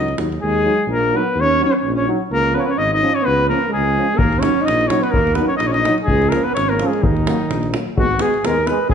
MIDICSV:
0, 0, Header, 1, 7, 480
1, 0, Start_track
1, 0, Key_signature, -6, "minor"
1, 0, Tempo, 472069
1, 418, Time_signature, 2, 2, 24, 8
1, 9091, End_track
2, 0, Start_track
2, 0, Title_t, "Flugelhorn"
2, 0, Program_c, 0, 56
2, 0, Note_on_c, 0, 75, 92
2, 182, Note_off_c, 0, 75, 0
2, 428, Note_on_c, 0, 68, 86
2, 871, Note_off_c, 0, 68, 0
2, 922, Note_on_c, 0, 70, 89
2, 1180, Note_on_c, 0, 71, 91
2, 1195, Note_off_c, 0, 70, 0
2, 1428, Note_on_c, 0, 73, 117
2, 1443, Note_off_c, 0, 71, 0
2, 1645, Note_off_c, 0, 73, 0
2, 1669, Note_on_c, 0, 73, 84
2, 1783, Note_off_c, 0, 73, 0
2, 1789, Note_on_c, 0, 73, 71
2, 1946, Note_off_c, 0, 73, 0
2, 2000, Note_on_c, 0, 73, 83
2, 2122, Note_off_c, 0, 73, 0
2, 2367, Note_on_c, 0, 70, 107
2, 2588, Note_on_c, 0, 71, 74
2, 2603, Note_off_c, 0, 70, 0
2, 2640, Note_on_c, 0, 73, 72
2, 2656, Note_off_c, 0, 71, 0
2, 2671, Note_on_c, 0, 71, 73
2, 2686, Note_off_c, 0, 73, 0
2, 2744, Note_on_c, 0, 73, 87
2, 2760, Note_off_c, 0, 71, 0
2, 2830, Note_on_c, 0, 75, 95
2, 2845, Note_off_c, 0, 73, 0
2, 2960, Note_off_c, 0, 75, 0
2, 2983, Note_on_c, 0, 75, 93
2, 3202, Note_on_c, 0, 73, 94
2, 3217, Note_off_c, 0, 75, 0
2, 3303, Note_on_c, 0, 71, 119
2, 3318, Note_off_c, 0, 73, 0
2, 3544, Note_off_c, 0, 71, 0
2, 3553, Note_on_c, 0, 70, 87
2, 3773, Note_off_c, 0, 70, 0
2, 3794, Note_on_c, 0, 68, 97
2, 4249, Note_on_c, 0, 70, 105
2, 4264, Note_off_c, 0, 68, 0
2, 4471, Note_on_c, 0, 73, 89
2, 4486, Note_off_c, 0, 70, 0
2, 4736, Note_on_c, 0, 75, 87
2, 4751, Note_off_c, 0, 73, 0
2, 4959, Note_on_c, 0, 73, 79
2, 4974, Note_off_c, 0, 75, 0
2, 5115, Note_on_c, 0, 71, 88
2, 5130, Note_off_c, 0, 73, 0
2, 5196, Note_on_c, 0, 70, 87
2, 5212, Note_off_c, 0, 71, 0
2, 5436, Note_on_c, 0, 71, 78
2, 5452, Note_off_c, 0, 70, 0
2, 5565, Note_off_c, 0, 71, 0
2, 5571, Note_on_c, 0, 73, 85
2, 5656, Note_off_c, 0, 73, 0
2, 5662, Note_on_c, 0, 75, 91
2, 5764, Note_on_c, 0, 73, 78
2, 5779, Note_off_c, 0, 75, 0
2, 5818, Note_on_c, 0, 75, 92
2, 5833, Note_off_c, 0, 73, 0
2, 6056, Note_off_c, 0, 75, 0
2, 6138, Note_on_c, 0, 68, 95
2, 6398, Note_on_c, 0, 70, 76
2, 6413, Note_off_c, 0, 68, 0
2, 6545, Note_on_c, 0, 71, 86
2, 6560, Note_off_c, 0, 70, 0
2, 6648, Note_off_c, 0, 71, 0
2, 6654, Note_on_c, 0, 73, 98
2, 6805, Note_on_c, 0, 70, 83
2, 6820, Note_off_c, 0, 73, 0
2, 6983, Note_on_c, 0, 68, 67
2, 6999, Note_off_c, 0, 70, 0
2, 7150, Note_on_c, 0, 63, 73
2, 7165, Note_off_c, 0, 68, 0
2, 7865, Note_off_c, 0, 63, 0
2, 8109, Note_on_c, 0, 66, 104
2, 8358, Note_on_c, 0, 68, 80
2, 8373, Note_off_c, 0, 66, 0
2, 8600, Note_on_c, 0, 70, 83
2, 8615, Note_off_c, 0, 68, 0
2, 8813, Note_on_c, 0, 71, 76
2, 8828, Note_off_c, 0, 70, 0
2, 9049, Note_off_c, 0, 71, 0
2, 9055, Note_on_c, 0, 68, 99
2, 9091, Note_off_c, 0, 68, 0
2, 9091, End_track
3, 0, Start_track
3, 0, Title_t, "Alto saxophone"
3, 0, Program_c, 1, 65
3, 0, Note_on_c, 1, 63, 88
3, 162, Note_off_c, 1, 63, 0
3, 420, Note_on_c, 1, 56, 87
3, 867, Note_off_c, 1, 56, 0
3, 923, Note_on_c, 1, 58, 76
3, 1194, Note_on_c, 1, 59, 74
3, 1209, Note_off_c, 1, 58, 0
3, 1437, Note_on_c, 1, 61, 94
3, 1452, Note_off_c, 1, 59, 0
3, 1650, Note_off_c, 1, 61, 0
3, 1678, Note_on_c, 1, 61, 86
3, 1788, Note_off_c, 1, 61, 0
3, 1794, Note_on_c, 1, 61, 64
3, 1938, Note_off_c, 1, 61, 0
3, 1971, Note_on_c, 1, 61, 76
3, 2107, Note_off_c, 1, 61, 0
3, 2334, Note_on_c, 1, 58, 82
3, 2591, Note_on_c, 1, 59, 85
3, 2606, Note_off_c, 1, 58, 0
3, 2620, Note_on_c, 1, 61, 71
3, 2636, Note_off_c, 1, 59, 0
3, 2642, Note_on_c, 1, 59, 79
3, 2657, Note_off_c, 1, 61, 0
3, 2707, Note_on_c, 1, 61, 70
3, 2722, Note_off_c, 1, 59, 0
3, 2827, Note_on_c, 1, 63, 81
3, 2842, Note_off_c, 1, 61, 0
3, 2959, Note_off_c, 1, 63, 0
3, 2970, Note_on_c, 1, 63, 80
3, 3185, Note_on_c, 1, 61, 76
3, 3200, Note_off_c, 1, 63, 0
3, 3278, Note_on_c, 1, 59, 85
3, 3293, Note_off_c, 1, 61, 0
3, 3517, Note_off_c, 1, 59, 0
3, 3523, Note_on_c, 1, 58, 79
3, 3738, Note_off_c, 1, 58, 0
3, 3744, Note_on_c, 1, 56, 81
3, 4215, Note_on_c, 1, 58, 87
3, 4230, Note_off_c, 1, 56, 0
3, 4466, Note_on_c, 1, 61, 90
3, 4481, Note_off_c, 1, 58, 0
3, 4693, Note_on_c, 1, 63, 84
3, 4709, Note_off_c, 1, 61, 0
3, 4963, Note_on_c, 1, 61, 75
3, 4978, Note_off_c, 1, 63, 0
3, 5094, Note_on_c, 1, 59, 83
3, 5109, Note_off_c, 1, 61, 0
3, 5221, Note_on_c, 1, 58, 95
3, 5237, Note_off_c, 1, 59, 0
3, 5444, Note_on_c, 1, 59, 75
3, 5459, Note_off_c, 1, 58, 0
3, 5558, Note_off_c, 1, 59, 0
3, 5564, Note_on_c, 1, 61, 67
3, 5664, Note_off_c, 1, 61, 0
3, 5670, Note_on_c, 1, 63, 75
3, 5809, Note_on_c, 1, 61, 76
3, 5824, Note_off_c, 1, 63, 0
3, 5829, Note_on_c, 1, 63, 86
3, 5844, Note_off_c, 1, 61, 0
3, 6061, Note_off_c, 1, 63, 0
3, 6173, Note_on_c, 1, 56, 83
3, 6422, Note_on_c, 1, 58, 77
3, 6437, Note_off_c, 1, 56, 0
3, 6564, Note_on_c, 1, 59, 75
3, 6579, Note_off_c, 1, 58, 0
3, 6659, Note_off_c, 1, 59, 0
3, 6665, Note_on_c, 1, 61, 76
3, 6835, Note_on_c, 1, 58, 77
3, 6850, Note_off_c, 1, 61, 0
3, 6990, Note_on_c, 1, 56, 65
3, 7005, Note_off_c, 1, 58, 0
3, 7145, Note_on_c, 1, 51, 84
3, 7160, Note_off_c, 1, 56, 0
3, 7862, Note_off_c, 1, 51, 0
3, 8120, Note_on_c, 1, 66, 87
3, 8340, Note_on_c, 1, 68, 74
3, 8355, Note_off_c, 1, 66, 0
3, 8602, Note_on_c, 1, 70, 75
3, 8617, Note_off_c, 1, 68, 0
3, 8855, Note_on_c, 1, 71, 68
3, 8870, Note_off_c, 1, 70, 0
3, 9039, Note_off_c, 1, 71, 0
3, 9045, Note_on_c, 1, 68, 96
3, 9091, Note_off_c, 1, 68, 0
3, 9091, End_track
4, 0, Start_track
4, 0, Title_t, "Euphonium"
4, 0, Program_c, 2, 58
4, 184, Note_on_c, 2, 63, 50
4, 279, Note_off_c, 2, 63, 0
4, 653, Note_on_c, 2, 63, 56
4, 750, Note_off_c, 2, 63, 0
4, 1144, Note_on_c, 2, 63, 55
4, 1239, Note_off_c, 2, 63, 0
4, 1630, Note_on_c, 2, 63, 65
4, 1725, Note_off_c, 2, 63, 0
4, 2102, Note_on_c, 2, 63, 61
4, 2198, Note_off_c, 2, 63, 0
4, 2579, Note_on_c, 2, 61, 62
4, 2676, Note_off_c, 2, 61, 0
4, 3063, Note_on_c, 2, 61, 64
4, 3159, Note_off_c, 2, 61, 0
4, 3558, Note_on_c, 2, 61, 59
4, 3651, Note_off_c, 2, 61, 0
4, 4039, Note_on_c, 2, 61, 54
4, 4133, Note_off_c, 2, 61, 0
4, 4507, Note_on_c, 2, 63, 52
4, 4603, Note_off_c, 2, 63, 0
4, 4982, Note_on_c, 2, 63, 58
4, 5079, Note_off_c, 2, 63, 0
4, 5477, Note_on_c, 2, 63, 65
4, 5571, Note_off_c, 2, 63, 0
4, 5957, Note_on_c, 2, 63, 68
4, 6051, Note_off_c, 2, 63, 0
4, 6447, Note_on_c, 2, 61, 54
4, 6539, Note_off_c, 2, 61, 0
4, 6933, Note_on_c, 2, 61, 61
4, 7023, Note_off_c, 2, 61, 0
4, 7398, Note_on_c, 2, 58, 58
4, 7491, Note_off_c, 2, 58, 0
4, 7884, Note_on_c, 2, 58, 46
4, 7975, Note_off_c, 2, 58, 0
4, 8117, Note_on_c, 2, 59, 60
4, 8209, Note_off_c, 2, 59, 0
4, 8332, Note_on_c, 2, 59, 60
4, 8429, Note_off_c, 2, 59, 0
4, 8572, Note_on_c, 2, 59, 61
4, 8669, Note_off_c, 2, 59, 0
4, 8793, Note_on_c, 2, 59, 57
4, 8894, Note_off_c, 2, 59, 0
4, 9040, Note_on_c, 2, 59, 67
4, 9091, Note_off_c, 2, 59, 0
4, 9091, End_track
5, 0, Start_track
5, 0, Title_t, "Trombone"
5, 0, Program_c, 3, 57
5, 179, Note_on_c, 3, 54, 46
5, 275, Note_off_c, 3, 54, 0
5, 657, Note_on_c, 3, 54, 45
5, 754, Note_off_c, 3, 54, 0
5, 1146, Note_on_c, 3, 54, 56
5, 1241, Note_off_c, 3, 54, 0
5, 1622, Note_on_c, 3, 54, 54
5, 1718, Note_off_c, 3, 54, 0
5, 2109, Note_on_c, 3, 54, 64
5, 2204, Note_off_c, 3, 54, 0
5, 2595, Note_on_c, 3, 53, 62
5, 2689, Note_off_c, 3, 53, 0
5, 3074, Note_on_c, 3, 53, 56
5, 3169, Note_off_c, 3, 53, 0
5, 3547, Note_on_c, 3, 53, 51
5, 3643, Note_off_c, 3, 53, 0
5, 4040, Note_on_c, 3, 53, 50
5, 4133, Note_off_c, 3, 53, 0
5, 4517, Note_on_c, 3, 54, 46
5, 4611, Note_off_c, 3, 54, 0
5, 4980, Note_on_c, 3, 54, 61
5, 5077, Note_off_c, 3, 54, 0
5, 5466, Note_on_c, 3, 54, 56
5, 5562, Note_off_c, 3, 54, 0
5, 5955, Note_on_c, 3, 54, 65
5, 6049, Note_off_c, 3, 54, 0
5, 6430, Note_on_c, 3, 53, 58
5, 6525, Note_off_c, 3, 53, 0
5, 6918, Note_on_c, 3, 53, 65
5, 7011, Note_off_c, 3, 53, 0
5, 7401, Note_on_c, 3, 54, 52
5, 7493, Note_off_c, 3, 54, 0
5, 7866, Note_on_c, 3, 54, 48
5, 7961, Note_off_c, 3, 54, 0
5, 8102, Note_on_c, 3, 56, 59
5, 8197, Note_off_c, 3, 56, 0
5, 8353, Note_on_c, 3, 56, 53
5, 8446, Note_off_c, 3, 56, 0
5, 8612, Note_on_c, 3, 56, 62
5, 8701, Note_off_c, 3, 56, 0
5, 8845, Note_on_c, 3, 56, 65
5, 8935, Note_off_c, 3, 56, 0
5, 9091, End_track
6, 0, Start_track
6, 0, Title_t, "Tuba"
6, 0, Program_c, 4, 58
6, 0, Note_on_c, 4, 37, 79
6, 152, Note_off_c, 4, 37, 0
6, 182, Note_on_c, 4, 39, 75
6, 397, Note_off_c, 4, 39, 0
6, 430, Note_on_c, 4, 39, 84
6, 691, Note_off_c, 4, 39, 0
6, 882, Note_on_c, 4, 34, 92
6, 1152, Note_off_c, 4, 34, 0
6, 1375, Note_on_c, 4, 39, 92
6, 1641, Note_off_c, 4, 39, 0
6, 1868, Note_on_c, 4, 34, 89
6, 2131, Note_off_c, 4, 34, 0
6, 2341, Note_on_c, 4, 37, 88
6, 2606, Note_off_c, 4, 37, 0
6, 2827, Note_on_c, 4, 32, 82
6, 3090, Note_off_c, 4, 32, 0
6, 3319, Note_on_c, 4, 37, 96
6, 3579, Note_off_c, 4, 37, 0
6, 3799, Note_on_c, 4, 37, 87
6, 4060, Note_off_c, 4, 37, 0
6, 4266, Note_on_c, 4, 39, 83
6, 4530, Note_off_c, 4, 39, 0
6, 4753, Note_on_c, 4, 34, 95
6, 5015, Note_off_c, 4, 34, 0
6, 5227, Note_on_c, 4, 39, 91
6, 5491, Note_off_c, 4, 39, 0
6, 5705, Note_on_c, 4, 34, 95
6, 5969, Note_off_c, 4, 34, 0
6, 6181, Note_on_c, 4, 37, 99
6, 6446, Note_off_c, 4, 37, 0
6, 6663, Note_on_c, 4, 32, 85
6, 6927, Note_off_c, 4, 32, 0
6, 7152, Note_on_c, 4, 39, 90
6, 7413, Note_off_c, 4, 39, 0
6, 7620, Note_on_c, 4, 34, 89
6, 7884, Note_off_c, 4, 34, 0
6, 8097, Note_on_c, 4, 32, 78
6, 8361, Note_off_c, 4, 32, 0
6, 8585, Note_on_c, 4, 39, 82
6, 8846, Note_off_c, 4, 39, 0
6, 9059, Note_on_c, 4, 32, 100
6, 9091, Note_off_c, 4, 32, 0
6, 9091, End_track
7, 0, Start_track
7, 0, Title_t, "Davul"
7, 85, Note_on_c, 9, 37, 21
7, 186, Note_off_c, 9, 37, 0
7, 186, Note_on_c, 9, 37, 59
7, 287, Note_off_c, 9, 37, 0
7, 329, Note_on_c, 9, 37, 21
7, 431, Note_off_c, 9, 37, 0
7, 4258, Note_on_c, 9, 43, 96
7, 4360, Note_off_c, 9, 43, 0
7, 4398, Note_on_c, 9, 37, 24
7, 4500, Note_off_c, 9, 37, 0
7, 4501, Note_on_c, 9, 37, 65
7, 4602, Note_off_c, 9, 37, 0
7, 4761, Note_on_c, 9, 37, 57
7, 4863, Note_off_c, 9, 37, 0
7, 4890, Note_on_c, 9, 37, 26
7, 4985, Note_off_c, 9, 37, 0
7, 4985, Note_on_c, 9, 37, 62
7, 5087, Note_off_c, 9, 37, 0
7, 5120, Note_on_c, 9, 37, 27
7, 5221, Note_off_c, 9, 37, 0
7, 5223, Note_on_c, 9, 43, 81
7, 5324, Note_off_c, 9, 43, 0
7, 5358, Note_on_c, 9, 37, 23
7, 5443, Note_off_c, 9, 37, 0
7, 5443, Note_on_c, 9, 37, 53
7, 5545, Note_off_c, 9, 37, 0
7, 5696, Note_on_c, 9, 37, 52
7, 5798, Note_off_c, 9, 37, 0
7, 5839, Note_on_c, 9, 37, 22
7, 5940, Note_off_c, 9, 37, 0
7, 5952, Note_on_c, 9, 37, 58
7, 6054, Note_off_c, 9, 37, 0
7, 6080, Note_on_c, 9, 37, 25
7, 6181, Note_on_c, 9, 43, 79
7, 6182, Note_off_c, 9, 37, 0
7, 6282, Note_off_c, 9, 43, 0
7, 6322, Note_on_c, 9, 37, 25
7, 6424, Note_off_c, 9, 37, 0
7, 6429, Note_on_c, 9, 37, 57
7, 6531, Note_off_c, 9, 37, 0
7, 6678, Note_on_c, 9, 37, 57
7, 6779, Note_off_c, 9, 37, 0
7, 6803, Note_on_c, 9, 37, 20
7, 6905, Note_off_c, 9, 37, 0
7, 6909, Note_on_c, 9, 37, 55
7, 7011, Note_off_c, 9, 37, 0
7, 7051, Note_on_c, 9, 37, 23
7, 7152, Note_off_c, 9, 37, 0
7, 7153, Note_on_c, 9, 43, 93
7, 7254, Note_off_c, 9, 43, 0
7, 7286, Note_on_c, 9, 37, 22
7, 7388, Note_off_c, 9, 37, 0
7, 7394, Note_on_c, 9, 37, 69
7, 7496, Note_off_c, 9, 37, 0
7, 7633, Note_on_c, 9, 37, 54
7, 7735, Note_off_c, 9, 37, 0
7, 7758, Note_on_c, 9, 37, 25
7, 7859, Note_off_c, 9, 37, 0
7, 7867, Note_on_c, 9, 37, 65
7, 7968, Note_off_c, 9, 37, 0
7, 8110, Note_on_c, 9, 43, 90
7, 8212, Note_off_c, 9, 43, 0
7, 8248, Note_on_c, 9, 37, 20
7, 8332, Note_off_c, 9, 37, 0
7, 8332, Note_on_c, 9, 37, 64
7, 8434, Note_off_c, 9, 37, 0
7, 8480, Note_on_c, 9, 37, 22
7, 8582, Note_off_c, 9, 37, 0
7, 8588, Note_on_c, 9, 37, 65
7, 8689, Note_off_c, 9, 37, 0
7, 8818, Note_on_c, 9, 37, 58
7, 8920, Note_off_c, 9, 37, 0
7, 9045, Note_on_c, 9, 43, 90
7, 9091, Note_off_c, 9, 43, 0
7, 9091, End_track
0, 0, End_of_file